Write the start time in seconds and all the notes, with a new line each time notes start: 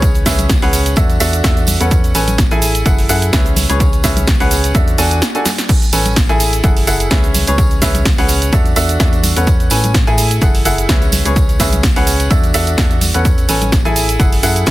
Already playing: C#2 C#4 G#4 B4 C#5
0.02 kick, closed hi-hat, tambourine, cabasa
0.14 closed hi-hat, tambourine, cabasa
0.26 C#2 C#4 G#4 B4 E5, kick, snare, open hi-hat, tambourine, cabasa
0.39 closed hi-hat, tambourine, high conga, cabasa
0.49 kick, snare, closed hi-hat, tambourine, cabasa
0.62 C#2 C#4 G#4 B4 F#5, open hi-hat, tambourine, cabasa
0.73 open hi-hat, tambourine, cabasa
0.86 closed hi-hat, tambourine, cabasa
0.96 E2 D4 F#4 A4 E5, kick, closed hi-hat, tambourine, high conga, cabasa
1.10 closed hi-hat, tambourine, cabasa
1.20 E2 D4 F#4 A4 E5, open hi-hat, tambourine, cabasa
1.33 closed hi-hat, tambourine, cabasa
1.44 E2 D4 F#4 A4 E5, kick, snare, closed hi-hat, tambourine, cabasa
1.57 closed hi-hat, tambourine, cabasa
1.67 open hi-hat, tambourine, high conga, cabasa
1.80 E2 C#4 A4 B4 F#5, closed hi-hat, tambourine, cabasa
1.91 kick, closed hi-hat, tambourine, cabasa
2.04 closed hi-hat, tambourine, cabasa
2.15 A1 C#4 A4 B4 G#5, open hi-hat, tambourine, cabasa
2.28 closed hi-hat, tambourine, high conga, cabasa
2.38 kick, snare, closed hi-hat, tambourine, cabasa
2.51 A1 E4 G#4 A4 G#5, closed hi-hat, tambourine, cabasa
2.62 open hi-hat, tambourine, cabasa
2.75 closed hi-hat, tambourine, cabasa
2.86 F#1 E4 G#4 A4 F#5, kick, closed hi-hat, tambourine, high conga, cabasa
2.98 open hi-hat, tambourine, cabasa
3.09 F#2 E4 G#4 A4 F#5, open hi-hat, tambourine, cabasa
3.22 closed hi-hat, tambourine, cabasa
3.33 C#2 C#4 G#4 B4 E5, kick, snare, closed hi-hat, tambourine, cabasa
3.46 closed hi-hat, tambourine, cabasa
3.56 open hi-hat, tambourine, high conga, cabasa
3.69 C#2 C#4 G#4 B4 C#5, closed hi-hat, tambourine, cabasa
3.80 kick, closed hi-hat, tambourine, cabasa
3.93 closed hi-hat, tambourine, cabasa
4.04 C#2 C#4 G#4 B4 E5, kick, snare, open hi-hat, tambourine, cabasa
4.17 closed hi-hat, tambourine, high conga, cabasa
4.27 kick, snare, closed hi-hat, tambourine, cabasa
4.40 C#2 C#4 G#4 B4 F#5, open hi-hat, tambourine, cabasa
4.51 open hi-hat, tambourine, cabasa
4.64 closed hi-hat, tambourine, cabasa
4.75 E2 D4 F#4 A4 E5, kick, closed hi-hat, tambourine, high conga, cabasa
4.88 closed hi-hat, tambourine, cabasa
4.98 E2 D4 F#4 A4 G#5, open hi-hat, tambourine, cabasa
5.11 closed hi-hat, tambourine, cabasa
5.22 snare, closed hi-hat, tambourine, cabasa
5.35 D4 F#4 A4 G#5, closed hi-hat, tambourine, cabasa
5.46 snare, open hi-hat, tambourine, high conga, cabasa
5.58 snare, closed hi-hat, tambourine, cabasa
5.69 kick, closed hi-hat, tambourine, crash, cabasa
5.82 closed hi-hat, tambourine, cabasa
5.92 A1 C#4 A4 B4 G#5, open hi-hat, tambourine, cabasa
6.06 closed hi-hat, tambourine, high conga, cabasa
6.16 kick, snare, closed hi-hat, tambourine, cabasa
6.29 A1 E4 G#4 A4 G#5, closed hi-hat, tambourine, cabasa
6.40 open hi-hat, tambourine, cabasa
6.53 closed hi-hat, tambourine, cabasa
6.63 F#1 E4 G#4 A4 F#5, kick, closed hi-hat, tambourine, high conga, cabasa
6.76 open hi-hat, tambourine, cabasa
6.87 F#1 E4 G#4 A4 F#5, open hi-hat, tambourine, cabasa
7.00 closed hi-hat, tambourine, cabasa
7.11 C#2 C#4 G#4 B4 E5, kick, snare, closed hi-hat, tambourine, cabasa
7.24 closed hi-hat, tambourine, cabasa
7.34 open hi-hat, tambourine, high conga, cabasa
7.47 C#2 C#4 G#4 B4 C#5, closed hi-hat, tambourine, cabasa
7.58 kick, closed hi-hat, tambourine, cabasa
7.70 closed hi-hat, tambourine, cabasa
7.82 C#2 C#4 G#4 B4 E5, kick, snare, open hi-hat, tambourine, cabasa
7.95 closed hi-hat, tambourine, high conga, cabasa
8.05 kick, snare, closed hi-hat, tambourine, cabasa
8.18 C#2 C#4 G#4 B4 F#5, open hi-hat, tambourine, cabasa
8.28 open hi-hat, tambourine, cabasa
8.42 closed hi-hat, tambourine, cabasa
8.52 E2 D4 F#4 A4 E5, kick, closed hi-hat, tambourine, high conga, cabasa
8.65 closed hi-hat, tambourine, cabasa
8.76 E2 D4 F#4 A4 E5, open hi-hat, tambourine, cabasa
8.89 closed hi-hat, tambourine, cabasa
9.00 E2 D4 F#4 A4 E5, kick, snare, closed hi-hat, tambourine, cabasa
9.13 closed hi-hat, tambourine, cabasa
9.24 open hi-hat, tambourine, high conga, cabasa
9.36 E2 C#4 A4 B4 F#5, closed hi-hat, tambourine, cabasa
9.47 kick, closed hi-hat, tambourine, cabasa
9.60 closed hi-hat, tambourine, cabasa
9.70 A2 C#4 A4 B4 G#5, open hi-hat, tambourine, cabasa
9.84 closed hi-hat, tambourine, high conga, cabasa
9.94 kick, snare, closed hi-hat, tambourine, cabasa
10.07 A2 E4 G#4 A4 G#5, closed hi-hat, tambourine, cabasa
10.18 open hi-hat, tambourine, cabasa
10.31 closed hi-hat, tambourine, cabasa
10.41 F#1 E4 G#4 A4 F#5, kick, closed hi-hat, tambourine, high conga, cabasa
10.55 open hi-hat, tambourine, cabasa
10.65 F#1 E4 G#4 A4 F#5, open hi-hat, tambourine, cabasa
10.78 closed hi-hat, tambourine, cabasa
10.89 C#2 C#4 G#4 B4 E5, kick, snare, closed hi-hat, tambourine, cabasa
11.02 closed hi-hat, tambourine, cabasa
11.12 open hi-hat, tambourine, high conga, cabasa
11.25 C#2 C#4 G#4 B4 C#5, closed hi-hat, tambourine, cabasa
11.36 kick, closed hi-hat, tambourine, cabasa
11.49 closed hi-hat, tambourine, cabasa
11.60 C#2 C#4 G#4 B4 E5, kick, snare, open hi-hat, tambourine, cabasa
11.72 closed hi-hat, tambourine, high conga, cabasa
11.83 kick, snare, closed hi-hat, tambourine, cabasa
11.96 C#2 C#4 G#4 B4 F#5, open hi-hat, tambourine, cabasa
12.07 open hi-hat, tambourine, cabasa
12.20 closed hi-hat, tambourine, cabasa
12.30 E2 D4 F#4 A4 E5, kick, closed hi-hat, tambourine, high conga, cabasa
12.44 closed hi-hat, tambourine, cabasa
12.54 E2 D4 F#4 A4 E5, open hi-hat, tambourine, cabasa
12.67 closed hi-hat, tambourine, cabasa
12.78 E2 D4 F#4 A4 E5, kick, snare, closed hi-hat, tambourine, cabasa
12.90 closed hi-hat, tambourine, cabasa
13.01 open hi-hat, tambourine, high conga, cabasa
13.14 E2 C#4 A4 B4 F#5, closed hi-hat, tambourine, cabasa
13.25 kick, closed hi-hat, tambourine, cabasa
13.38 closed hi-hat, tambourine, cabasa
13.49 A1 C#4 A4 B4 G#5, open hi-hat, tambourine, cabasa
13.61 closed hi-hat, tambourine, high conga, cabasa
13.72 kick, snare, closed hi-hat, tambourine, cabasa
13.85 A1 E4 G#4 A4 G#5, closed hi-hat, tambourine, cabasa
13.96 open hi-hat, tambourine, cabasa
14.08 closed hi-hat, tambourine, cabasa
14.20 F#1 E4 G#4 A4 F#5, kick, closed hi-hat, tambourine, high conga, cabasa
14.32 open hi-hat, tambourine, cabasa
14.43 F#2 E4 G#4 A4 F#5, open hi-hat, tambourine, cabasa
14.56 closed hi-hat, tambourine, cabasa
14.66 C#2 C#4 G#4 B4 E5, kick, snare, closed hi-hat, tambourine, cabasa